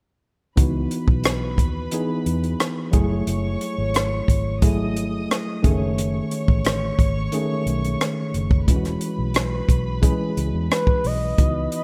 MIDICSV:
0, 0, Header, 1, 6, 480
1, 0, Start_track
1, 0, Key_signature, 4, "minor"
1, 0, Tempo, 675676
1, 408, Time_signature, 4, 2, 24, 8
1, 8410, End_track
2, 0, Start_track
2, 0, Title_t, "String section"
2, 0, Program_c, 0, 48
2, 408, Note_on_c, 0, 71, 67
2, 411, Note_on_c, 0, 83, 72
2, 2058, Note_off_c, 0, 71, 0
2, 2059, Note_off_c, 0, 83, 0
2, 2092, Note_on_c, 0, 73, 75
2, 2093, Note_on_c, 0, 85, 83
2, 3264, Note_off_c, 0, 73, 0
2, 3265, Note_off_c, 0, 85, 0
2, 3289, Note_on_c, 0, 75, 66
2, 3293, Note_on_c, 0, 87, 74
2, 3992, Note_off_c, 0, 75, 0
2, 3995, Note_off_c, 0, 87, 0
2, 4011, Note_on_c, 0, 73, 74
2, 4014, Note_on_c, 0, 85, 83
2, 6138, Note_off_c, 0, 73, 0
2, 6140, Note_off_c, 0, 85, 0
2, 6167, Note_on_c, 0, 71, 70
2, 6167, Note_on_c, 0, 83, 75
2, 8057, Note_off_c, 0, 71, 0
2, 8057, Note_off_c, 0, 83, 0
2, 8088, Note_on_c, 0, 71, 72
2, 8088, Note_on_c, 0, 83, 81
2, 8410, Note_off_c, 0, 71, 0
2, 8410, Note_off_c, 0, 83, 0
2, 8410, End_track
3, 0, Start_track
3, 0, Title_t, "Analog synth lead"
3, 0, Program_c, 1, 81
3, 7616, Note_on_c, 1, 71, 92
3, 7858, Note_on_c, 1, 75, 105
3, 7869, Note_off_c, 1, 71, 0
3, 8331, Note_off_c, 1, 75, 0
3, 8353, Note_on_c, 1, 75, 92
3, 8410, Note_off_c, 1, 75, 0
3, 8410, End_track
4, 0, Start_track
4, 0, Title_t, "Tine electric piano"
4, 0, Program_c, 2, 4
4, 398, Note_on_c, 2, 52, 71
4, 403, Note_on_c, 2, 59, 70
4, 407, Note_on_c, 2, 63, 64
4, 412, Note_on_c, 2, 66, 79
4, 561, Control_c, 2, 64, 127
4, 1293, Note_off_c, 2, 52, 0
4, 1296, Note_off_c, 2, 59, 0
4, 1297, Note_off_c, 2, 63, 0
4, 1300, Note_off_c, 2, 66, 0
4, 1366, Note_on_c, 2, 52, 72
4, 1372, Note_on_c, 2, 59, 66
4, 1372, Note_on_c, 2, 63, 67
4, 1377, Note_on_c, 2, 68, 83
4, 2068, Note_on_c, 2, 54, 77
4, 2074, Note_on_c, 2, 57, 74
4, 2075, Note_off_c, 2, 68, 0
4, 2078, Note_on_c, 2, 64, 72
4, 2083, Note_on_c, 2, 68, 89
4, 2086, Note_off_c, 2, 52, 0
4, 2089, Note_off_c, 2, 59, 0
4, 2089, Note_off_c, 2, 63, 0
4, 2095, Control_c, 2, 64, 0
4, 2201, Control_c, 2, 64, 127
4, 2968, Note_off_c, 2, 54, 0
4, 2970, Note_off_c, 2, 57, 0
4, 2972, Note_off_c, 2, 64, 0
4, 2975, Note_off_c, 2, 68, 0
4, 3284, Note_on_c, 2, 54, 72
4, 3289, Note_on_c, 2, 57, 69
4, 3290, Note_on_c, 2, 64, 72
4, 3295, Note_on_c, 2, 68, 81
4, 3996, Note_off_c, 2, 57, 0
4, 3996, Note_on_c, 2, 51, 82
4, 4001, Note_off_c, 2, 68, 0
4, 4004, Note_off_c, 2, 54, 0
4, 4005, Note_on_c, 2, 57, 70
4, 4006, Note_on_c, 2, 61, 74
4, 4007, Note_off_c, 2, 64, 0
4, 4009, Note_on_c, 2, 68, 84
4, 4015, Control_c, 2, 64, 0
4, 4144, Control_c, 2, 64, 127
4, 4891, Note_off_c, 2, 51, 0
4, 4895, Note_off_c, 2, 57, 0
4, 4896, Note_off_c, 2, 61, 0
4, 4898, Note_off_c, 2, 68, 0
4, 5202, Note_on_c, 2, 51, 79
4, 5208, Note_on_c, 2, 57, 68
4, 5213, Note_on_c, 2, 61, 71
4, 5215, Note_on_c, 2, 68, 78
4, 6094, Note_off_c, 2, 51, 0
4, 6097, Note_off_c, 2, 57, 0
4, 6099, Note_off_c, 2, 61, 0
4, 6100, Note_off_c, 2, 68, 0
4, 6164, Note_on_c, 2, 52, 74
4, 6166, Note_on_c, 2, 56, 62
4, 6171, Note_on_c, 2, 61, 64
4, 6174, Control_c, 2, 64, 0
4, 6174, Note_on_c, 2, 65, 62
4, 6215, Note_off_c, 2, 65, 0
4, 6225, Note_on_c, 2, 66, 80
4, 6304, Control_c, 2, 64, 127
4, 7055, Note_off_c, 2, 52, 0
4, 7056, Note_off_c, 2, 56, 0
4, 7059, Note_off_c, 2, 61, 0
4, 7085, Note_off_c, 2, 66, 0
4, 7115, Note_on_c, 2, 52, 75
4, 7118, Note_on_c, 2, 56, 69
4, 7125, Note_on_c, 2, 61, 69
4, 7127, Note_on_c, 2, 68, 82
4, 8011, Note_off_c, 2, 52, 0
4, 8012, Note_off_c, 2, 56, 0
4, 8016, Note_off_c, 2, 61, 0
4, 8017, Note_off_c, 2, 68, 0
4, 8082, Note_on_c, 2, 52, 57
4, 8084, Note_on_c, 2, 59, 54
4, 8089, Note_on_c, 2, 63, 53
4, 8093, Control_c, 2, 64, 0
4, 8095, Note_on_c, 2, 66, 65
4, 8203, Control_c, 2, 64, 127
4, 8410, Note_off_c, 2, 52, 0
4, 8410, Note_off_c, 2, 59, 0
4, 8410, Note_off_c, 2, 63, 0
4, 8410, Note_off_c, 2, 66, 0
4, 8410, End_track
5, 0, Start_track
5, 0, Title_t, "Fingered electric bass"
5, 0, Program_c, 3, 33
5, 409, Note_on_c, 3, 37, 101
5, 607, Note_off_c, 3, 37, 0
5, 766, Note_on_c, 3, 35, 70
5, 1123, Note_off_c, 3, 35, 0
5, 1123, Note_on_c, 3, 39, 78
5, 1323, Note_off_c, 3, 39, 0
5, 1606, Note_on_c, 3, 40, 73
5, 1805, Note_off_c, 3, 40, 0
5, 2084, Note_on_c, 3, 30, 80
5, 2284, Note_off_c, 3, 30, 0
5, 2323, Note_on_c, 3, 30, 83
5, 2523, Note_off_c, 3, 30, 0
5, 2686, Note_on_c, 3, 32, 75
5, 2984, Note_off_c, 3, 32, 0
5, 3042, Note_on_c, 3, 32, 83
5, 3735, Note_off_c, 3, 32, 0
5, 4009, Note_on_c, 3, 30, 92
5, 4405, Note_off_c, 3, 30, 0
5, 4605, Note_on_c, 3, 33, 78
5, 4903, Note_off_c, 3, 33, 0
5, 4963, Note_on_c, 3, 32, 81
5, 5162, Note_off_c, 3, 32, 0
5, 5443, Note_on_c, 3, 35, 84
5, 5642, Note_off_c, 3, 35, 0
5, 5926, Note_on_c, 3, 30, 76
5, 6166, Note_off_c, 3, 30, 0
5, 6166, Note_on_c, 3, 28, 90
5, 6364, Note_off_c, 3, 28, 0
5, 6526, Note_on_c, 3, 35, 76
5, 6823, Note_off_c, 3, 35, 0
5, 6882, Note_on_c, 3, 35, 77
5, 7181, Note_off_c, 3, 35, 0
5, 7367, Note_on_c, 3, 37, 74
5, 7465, Note_off_c, 3, 37, 0
5, 7488, Note_on_c, 3, 40, 91
5, 7586, Note_off_c, 3, 40, 0
5, 7847, Note_on_c, 3, 35, 80
5, 8045, Note_off_c, 3, 35, 0
5, 8089, Note_on_c, 3, 37, 76
5, 8286, Note_off_c, 3, 37, 0
5, 8410, End_track
6, 0, Start_track
6, 0, Title_t, "Drums"
6, 406, Note_on_c, 9, 42, 75
6, 408, Note_on_c, 9, 36, 95
6, 477, Note_off_c, 9, 42, 0
6, 479, Note_off_c, 9, 36, 0
6, 646, Note_on_c, 9, 42, 62
6, 718, Note_off_c, 9, 42, 0
6, 765, Note_on_c, 9, 36, 84
6, 836, Note_off_c, 9, 36, 0
6, 878, Note_on_c, 9, 42, 78
6, 891, Note_on_c, 9, 37, 104
6, 949, Note_off_c, 9, 42, 0
6, 962, Note_off_c, 9, 37, 0
6, 1122, Note_on_c, 9, 36, 82
6, 1129, Note_on_c, 9, 42, 58
6, 1193, Note_off_c, 9, 36, 0
6, 1200, Note_off_c, 9, 42, 0
6, 1360, Note_on_c, 9, 42, 82
6, 1431, Note_off_c, 9, 42, 0
6, 1607, Note_on_c, 9, 42, 60
6, 1678, Note_off_c, 9, 42, 0
6, 1730, Note_on_c, 9, 42, 42
6, 1801, Note_off_c, 9, 42, 0
6, 1846, Note_on_c, 9, 42, 65
6, 1849, Note_on_c, 9, 37, 92
6, 1917, Note_off_c, 9, 42, 0
6, 1920, Note_off_c, 9, 37, 0
6, 2081, Note_on_c, 9, 42, 58
6, 2084, Note_on_c, 9, 36, 86
6, 2152, Note_off_c, 9, 42, 0
6, 2155, Note_off_c, 9, 36, 0
6, 2324, Note_on_c, 9, 42, 79
6, 2395, Note_off_c, 9, 42, 0
6, 2564, Note_on_c, 9, 42, 65
6, 2635, Note_off_c, 9, 42, 0
6, 2801, Note_on_c, 9, 42, 81
6, 2814, Note_on_c, 9, 37, 102
6, 2872, Note_off_c, 9, 42, 0
6, 2885, Note_off_c, 9, 37, 0
6, 3042, Note_on_c, 9, 36, 75
6, 3050, Note_on_c, 9, 42, 56
6, 3113, Note_off_c, 9, 36, 0
6, 3121, Note_off_c, 9, 42, 0
6, 3282, Note_on_c, 9, 42, 83
6, 3284, Note_on_c, 9, 36, 93
6, 3353, Note_off_c, 9, 42, 0
6, 3355, Note_off_c, 9, 36, 0
6, 3527, Note_on_c, 9, 42, 61
6, 3598, Note_off_c, 9, 42, 0
6, 3772, Note_on_c, 9, 42, 61
6, 3775, Note_on_c, 9, 37, 88
6, 3843, Note_off_c, 9, 42, 0
6, 3846, Note_off_c, 9, 37, 0
6, 4008, Note_on_c, 9, 36, 90
6, 4008, Note_on_c, 9, 42, 58
6, 4079, Note_off_c, 9, 36, 0
6, 4079, Note_off_c, 9, 42, 0
6, 4250, Note_on_c, 9, 42, 81
6, 4321, Note_off_c, 9, 42, 0
6, 4485, Note_on_c, 9, 42, 65
6, 4556, Note_off_c, 9, 42, 0
6, 4605, Note_on_c, 9, 36, 80
6, 4676, Note_off_c, 9, 36, 0
6, 4721, Note_on_c, 9, 42, 83
6, 4735, Note_on_c, 9, 37, 100
6, 4792, Note_off_c, 9, 42, 0
6, 4806, Note_off_c, 9, 37, 0
6, 4963, Note_on_c, 9, 36, 82
6, 4969, Note_on_c, 9, 42, 56
6, 5034, Note_off_c, 9, 36, 0
6, 5040, Note_off_c, 9, 42, 0
6, 5201, Note_on_c, 9, 42, 81
6, 5272, Note_off_c, 9, 42, 0
6, 5448, Note_on_c, 9, 42, 59
6, 5519, Note_off_c, 9, 42, 0
6, 5573, Note_on_c, 9, 42, 45
6, 5644, Note_off_c, 9, 42, 0
6, 5689, Note_on_c, 9, 42, 62
6, 5692, Note_on_c, 9, 37, 92
6, 5760, Note_off_c, 9, 42, 0
6, 5763, Note_off_c, 9, 37, 0
6, 5926, Note_on_c, 9, 42, 58
6, 5997, Note_off_c, 9, 42, 0
6, 6044, Note_on_c, 9, 36, 86
6, 6115, Note_off_c, 9, 36, 0
6, 6166, Note_on_c, 9, 36, 93
6, 6167, Note_on_c, 9, 42, 75
6, 6237, Note_off_c, 9, 36, 0
6, 6238, Note_off_c, 9, 42, 0
6, 6287, Note_on_c, 9, 42, 46
6, 6292, Note_on_c, 9, 37, 28
6, 6358, Note_off_c, 9, 42, 0
6, 6363, Note_off_c, 9, 37, 0
6, 6400, Note_on_c, 9, 42, 62
6, 6471, Note_off_c, 9, 42, 0
6, 6637, Note_on_c, 9, 42, 83
6, 6650, Note_on_c, 9, 37, 98
6, 6708, Note_off_c, 9, 42, 0
6, 6721, Note_off_c, 9, 37, 0
6, 6881, Note_on_c, 9, 36, 84
6, 6887, Note_on_c, 9, 42, 61
6, 6952, Note_off_c, 9, 36, 0
6, 6958, Note_off_c, 9, 42, 0
6, 7123, Note_on_c, 9, 36, 89
6, 7124, Note_on_c, 9, 42, 84
6, 7194, Note_off_c, 9, 36, 0
6, 7195, Note_off_c, 9, 42, 0
6, 7369, Note_on_c, 9, 42, 63
6, 7440, Note_off_c, 9, 42, 0
6, 7610, Note_on_c, 9, 42, 62
6, 7613, Note_on_c, 9, 37, 92
6, 7681, Note_off_c, 9, 42, 0
6, 7684, Note_off_c, 9, 37, 0
6, 7722, Note_on_c, 9, 36, 83
6, 7793, Note_off_c, 9, 36, 0
6, 7844, Note_on_c, 9, 46, 56
6, 7915, Note_off_c, 9, 46, 0
6, 8086, Note_on_c, 9, 42, 74
6, 8087, Note_on_c, 9, 36, 93
6, 8157, Note_off_c, 9, 42, 0
6, 8158, Note_off_c, 9, 36, 0
6, 8325, Note_on_c, 9, 42, 62
6, 8396, Note_off_c, 9, 42, 0
6, 8410, End_track
0, 0, End_of_file